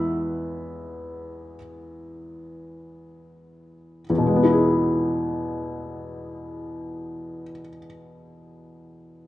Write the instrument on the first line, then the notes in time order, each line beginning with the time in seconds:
felt piano
Already playing: E2 G#3 B3 E4 E5 B5 E6
4.10 E2
4.18 B2
4.27 G#3
4.36 B3
4.43 E4
4.53 G#4